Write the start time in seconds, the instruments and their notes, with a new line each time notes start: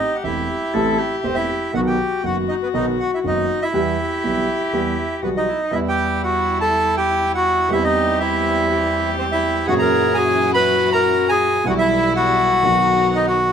Already playing: bandoneon D#4 D#5, cello G4
0.15 bandoneon F#5
0.23 grand piano E1 E2 E3 A3 C4 G4, bandoneon E4 E5
0.73 grand piano A1 A2 E3 A3 C4 G4, cello A4
0.98 cello G4
1.24 grand piano E1 E2 E3 A3 C4 G4, bandoneon C4 C5
1.35 bandoneon E4 E5
1.73 grand piano B1 B2 D#3 F#3 B3 F#4, cello F#4, bandoneon F#4 F#5
1.87 bandoneon G4 G5
2.23 grand piano F#1 F#2 D#3 F#3 B3 F#4, bandoneon F#4 F#5
2.48 bandoneon D#4 D#5
2.63 bandoneon B3 B4
2.74 grand piano B1 B2 D#3 F#3 B3 F#4, bandoneon D#4 D#5
3.00 bandoneon F#4 F#5
3.14 bandoneon E4 E5
3.24 grand piano F#1 F#2 D#3 F#3 B3 F#4, bandoneon D#5
3.28 bandoneon D#4
3.62 bandoneon E4 E5
3.72 grand piano E2 E3 G3 B3 G4, cello G4
4.24 grand piano B1 B2 E3 G3 B3 G4
4.73 grand piano E2 E3 G3 B3 G4
5.22 grand piano B1 B2 E3 G3 B3 G4, bandoneon B3 B4, cello F#4
5.37 bandoneon D#4 D#5
5.48 cello E4
5.64 cello D#4
5.71 grand piano E2 E3 G3 B3, string section G3 E4, cello E4, bandoneon E4 E5
5.75 grand piano E4
5.88 bandoneon G4 G5
6.23 bandoneon F#4 F#5
6.60 bandoneon A4 A5
6.97 bandoneon G4 G5
7.35 bandoneon F#4 F#5
7.69 grand piano E2 E3 G3 C4 G4, string section E2 E3 G3 C4, cello G4, bandoneon E5
7.74 bandoneon E4
7.84 bandoneon D#4 D#5
8.20 bandoneon E4 E5
8.70 cello G4
9.19 bandoneon C4 C5
9.31 bandoneon E4 E5
9.67 grand piano F#2 A#2 E3 F#3 C#4 F#4, string section F#3 C#4 E4, bandoneon F#4 F#5, cello G#4
9.79 bandoneon A#4 A#5
10.14 cello F#4, bandoneon G#4 G#5
10.54 bandoneon B4 B5
10.93 bandoneon A#4 A#5
11.29 bandoneon G#4 G#5
11.64 grand piano B1 B2 E3 G3 B3 E4, string section B2 G3 B3 E4, cello E4, bandoneon F#5
11.69 bandoneon F#4
11.78 bandoneon E4 E5
12.16 bandoneon F#4 F#5
12.63 grand piano B1 B2 D#3 F#3 B3 F#4, string section F#3 B3 D#4, cello F#4
13.15 bandoneon D#4 D#5
13.27 bandoneon F#4 F#5